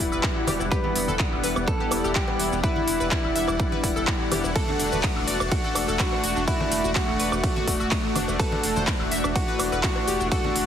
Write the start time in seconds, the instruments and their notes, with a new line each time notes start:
Already playing: ambient pad E3 G3 B3 D4 F#4, clean electric guitar E4
0.00 supersaw synth G3 E4 D5 F#5, shaker
0.12 sub bass E1, synth pluck B4, high woodblock, shaker
0.23 synth pluck E4, kick, clap, shaker
0.36 synth pluck E4
0.47 sub bass E1, synth pluck G4, open hi-hat, cowbell, high conga, high woodblock, shaker
0.60 sub bass E1, synth pluck E4, cowbell, shaker
0.71 supersaw synth G3 E4 D5 F#5, ambient pad E4, synth pluck G4, clean electric guitar B4, kick, shaker
0.84 synth pluck B3, high conga
0.96 sub bass E1, synth pluck B3, open hi-hat, shaker
1.08 sub bass E1, synth pluck A4, high conga, shaker
1.19 synth pluck B3, kick, clap, shaker
1.32 sub bass E1, synth pluck B3, high woodblock
1.44 sub bass E1, synth pluck B4, open hi-hat, shaker
1.56 sub bass E1, synth pluck B3, cowbell, high woodblock, shaker
1.68 synth pluck B3, clean electric guitar A4, kick, shaker
1.80 synth pluck G4
1.91 sub bass E1, supersaw synth G3 E4 D5 F#5, synth pluck B3, open hi-hat, cowbell, high woodblock, shaker
2.04 sub bass E1, synth pluck G4, high woodblock, shaker
2.15 clean electric guitar G4, kick, clap, shaker
2.28 synth pluck B3, cowbell
2.39 sub bass E1, synth pluck E4, open hi-hat, shaker
2.52 sub bass E1, synth pluck B3, shaker
2.64 supersaw synth G3 E4 D5 F#5, clean electric guitar E4, synth pluck B4, kick, shaker
2.76 synth pluck E4, high conga
2.88 sub bass E1, synth pluck E4, open hi-hat, shaker
3.00 sub bass E1, synth pluck B4, shaker
3.11 clean electric guitar E4, kick, clap, shaker
3.24 sub bass E1, synth pluck E4, high woodblock
3.36 sub bass E1, synth pluck E5, open hi-hat, shaker
3.48 sub bass E1, synth pluck E4, cowbell, high woodblock, shaker
3.60 synth pluck E4, kick, shaker
3.72 synth pluck B4, high conga
3.83 sub bass E1, supersaw synth G3 E4 D5 F#5, synth pluck E4, kick, open hi-hat, shaker
3.96 sub bass E1, synth pluck A4, high woodblock, shaker
4.07 synth pluck E4, kick, clap, shaker
4.20 synth pluck E4
4.32 sub bass E1, synth pluck G4, open hi-hat, cowbell, high conga, high woodblock, shaker
4.44 sub bass E1, synth pluck E4, cowbell, shaker
4.55 ambient pad A3 F#4, supersaw synth A3 F#4 D5 F#5, synth pluck A4, clean electric guitar A4, kick, ride, shaker
4.68 synth pluck D4, high conga
4.80 sub bass E1, synth pluck D4, open hi-hat, shaker
4.92 sub bass E1, synth pluck B4, high conga, shaker
5.03 synth pluck D4, kick, clap, ride, shaker
5.16 sub bass E1, synth pluck D4, high woodblock
5.28 sub bass E1, synth pluck D5, open hi-hat, shaker
5.40 sub bass E1, synth pluck D4, cowbell, high woodblock, shaker
5.52 synth pluck D4, clean electric guitar F#4, kick, ride, shaker
5.64 synth pluck A4
5.75 sub bass E1, supersaw synth A3 F#4 D5 F#5, synth pluck D4, open hi-hat, cowbell, high woodblock, shaker
5.88 sub bass E1, synth pluck A4, high woodblock, shaker
5.99 synth pluck D4, clean electric guitar F#4, kick, clap, ride, shaker
6.12 synth pluck D4, cowbell
6.24 sub bass E1, synth pluck F#4, open hi-hat, shaker
6.36 sub bass E1, synth pluck D4, shaker
6.48 supersaw synth A3 F#4 D5 F#5, clean electric guitar E4, synth pluck F#4, kick, ride, shaker
6.60 synth pluck A3, high conga
6.72 sub bass E1, synth pluck A3, open hi-hat, shaker
6.84 sub bass E1, synth pluck F#4, shaker
6.95 synth pluck A3, clean electric guitar F#4, kick, clap, ride, shaker
7.08 sub bass E1, synth pluck A3, high woodblock
7.19 sub bass E1, synth pluck B4, open hi-hat, shaker
7.32 sub bass E1, synth pluck A3, cowbell, high woodblock, shaker
7.44 synth pluck A3, kick, ride, shaker
7.56 synth pluck F#4, high conga
7.68 sub bass D1, supersaw synth A3 F#4 D5 F#5, synth pluck A3, kick, open hi-hat, shaker
7.80 sub bass E1, synth pluck F#4, high woodblock, shaker
7.91 synth pluck A3, kick, clap, ride, shaker
8.04 synth pluck A3
8.15 sub bass E1, synth pluck D4, open hi-hat, cowbell, high conga, high woodblock, shaker
8.28 sub bass E1, synth pluck A3, cowbell, shaker
8.39 supersaw synth A3 F#4 D5, ambient pad E4, clean electric guitar A4, synth pluck B4, kick, ride, shaker
8.52 synth pluck D4, high conga
8.63 sub bass E1, synth pluck D4, open hi-hat, shaker
8.76 sub bass E1, synth pluck C5, high conga, shaker
8.87 synth pluck D4, kick, clap, ride, shaker
9.00 sub bass E1, synth pluck D4, high woodblock
9.11 sub bass E1, synth pluck E5, open hi-hat, shaker
9.24 sub bass E1, synth pluck D4, cowbell, high woodblock, shaker
9.36 synth pluck D4, clean electric guitar F#4, kick, ride, shaker
9.48 synth pluck B4
9.59 sub bass E1, supersaw synth A3 F#4 D5 F#5, synth pluck D4, open hi-hat, cowbell, high woodblock, shaker
9.72 sub bass E1, synth pluck B4, high woodblock, shaker
9.83 synth pluck D4, clean electric guitar F#4, kick, clap, ride, shaker
9.96 synth pluck D4, cowbell
10.08 sub bass E1, synth pluck G4, open hi-hat, shaker
10.20 sub bass E1, synth pluck D4, shaker
10.32 supersaw synth F#4 D5 F#5, clean electric guitar F#4, synth pluck A4, kick, ride, shaker
10.44 synth pluck D4, high conga
10.56 sub bass E1, synth pluck D4, open hi-hat, shaker